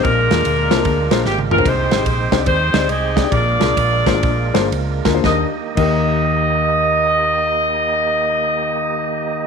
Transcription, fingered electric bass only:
X:1
M:4/4
L:1/8
Q:"Swing" 1/4=126
K:Eb
V:1 name="Fingered electric bass" clef=bass
B,,, E,, D,, C,, D,, B,,, A,,,2 | C,, A,,, B,,, C,, E,, D,, C,,2 | B,,, C,, B,,, A,,, B,,, G,,, _D,, =D,, | E,, z E,,6- |
E,,8 |]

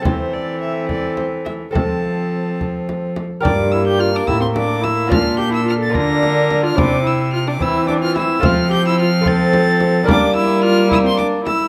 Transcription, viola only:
X:1
M:6/8
L:1/16
Q:3/8=72
K:Gdor
V:1 name="Viola"
A12 | A8- A2 z2 | D2 E G F D E C D2 E2 | F2 G E F A B4- B F |
D2 E2 F D E2 D F E2 | F2 G E F2 A6 | D2 E2 F2 E C D2 E2 |]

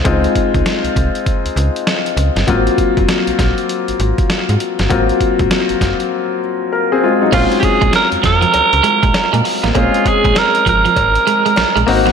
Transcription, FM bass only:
X:1
M:4/4
L:1/16
Q:"Swing 16ths" 1/4=99
K:Bbm
V:1 name="FM bass" clef=bass
D,,2 z D,, z C,, C,, z2 D,, D,, z3 D,, =G,,, | A,,,2 z G,,, z B,,, B,,, z2 A,,, A,,, z2 A,, z =G,,, | A,,,2 z A,,, z G,,, G,,, z8 z | B,,, z2 B,,, z F,, F,,2 D,, D,, z B,,, z B,, z =A,,, |
B,,, z2 B,,, z2 A,,,2 A,,,2 z2 B,,, B,,, A,,,2 |]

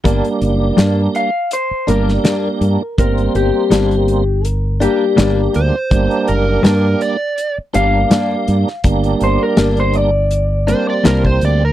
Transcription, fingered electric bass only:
X:1
M:4/4
L:1/16
Q:"Swing 16ths" 1/4=82
K:Gm
V:1 name="Fingered electric bass" clef=bass
G,,, z ^F,,,2 G,,2 z4 G,,,2 z2 G,, z | G,,,2 G,,, z G,,,8 G,,,2 D,, z | G,,, z ^F,,,2 G,,2 z4 G,,,2 z2 G,, z | G,,,2 G,,, z G,,,8 C,,2 D,,2 |]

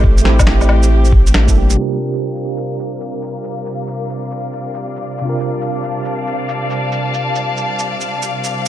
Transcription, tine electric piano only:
X:1
M:4/4
L:1/16
Q:"Swing 16ths" 1/4=138
K:Cmix
V:1 name="Tine electric piano"
[A,CEG]2 [A,CEG]8 z3 [A,CEA] [G,B,DG]2 | [C,DFGB]16- | [C,DFGB]16 | [C,DFGB]16- |
[C,DFGB]16 |]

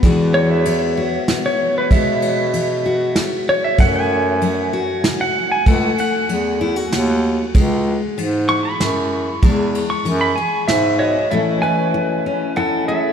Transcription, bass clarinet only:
X:1
M:3/4
L:1/8
Q:1/4=96
K:E
V:1 name="Bass clarinet" clef=bass
E,,4- E,, z | B,,6 | F,,6 | C,, z E,,2 D,,2 |
C,,2 G,,2 F,,2 | E,,2 F,, z G,,2 | z6 |]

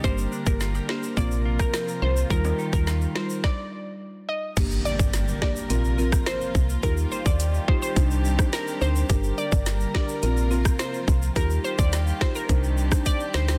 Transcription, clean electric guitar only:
X:1
M:4/4
L:1/16
Q:1/4=106
K:Gm
V:1 name="Clean electric guitar"
[G,B]2 D2 F G B2 B,2 F2 C2 F2 | [E,B]2 E2 F2 B2 z8 | z16 | z16 |
z16 | z16 |]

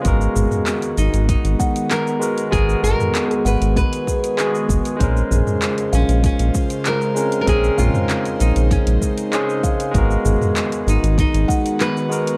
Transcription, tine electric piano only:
X:1
M:4/4
L:1/8
Q:1/4=97
K:Abdor
V:1 name="Tine electric piano"
[A,CGB]6- [A,CGB] [A,CGB] | [A,CGB] z4 z [A,CGA]2 | [A,DB=c]6- [A,DBc] [A,=CDB] | [A,=CDB] z4 z [A,DA=c]2 |
[A,CGB]6- [A,CGB] [A,CGB] |]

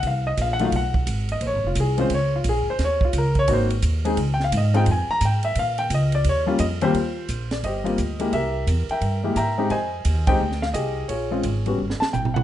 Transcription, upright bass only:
X:1
M:4/4
L:1/8
Q:"Swing" 1/4=174
K:Bbdor
V:1 name="Upright bass" clef=bass
C,,2 B,,,2 =B,,,2 A,,,2 | (3B,,, A,,, F,,, C,,2 D,,2 B,,, z | E,,2 D,,2 A,,,2 E,,2 | D,,2 A,,2 F,, z A,,2 |
B,,2 D,,2 E,,2 F,,2 | [K:Eb] E,,2 B,,,2 G,,,2 D,,2 | C,,2 =E,, z G,,2 A,,2 | F,,2 E,,2 D,,2 C,,2 |
B,,,2 A,,,2 G,,, z =A,,,2 |]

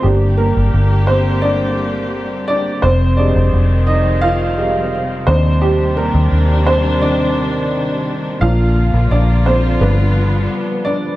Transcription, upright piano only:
X:1
M:4/4
L:1/8
Q:1/4=86
K:Cm
V:1 name="Upright piano"
G [B,B]2 [Cc] [Dd]3 [Dd] | [Cc] [Dd]2 [Ee] [Ff]3 c | [G,G] [B,B]2 [Cc] d4 | [Ff]2 [Dd] [Cc] =B3 [Dd] |]
V:2 name="Upright piano"
[G,B,D]8 | z [G,A,E] z3 [G,A,E] z [E,CD]- | [E,CD]4 [E,CD] z3 | [F,B,D]4 [F,=B,D]3 z |]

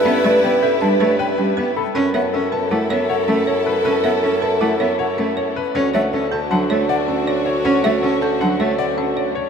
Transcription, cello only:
X:1
M:5/4
L:1/8
Q:1/4=158
K:F#phr
V:1 name="Cello"
B, A, B, z G, A, z G, B, z | C B, C z A, B, z A, z2 | C B, C z A, B, z A, z2 | C A, C z F, A, z4 |
C A, C z F, A, z4 |]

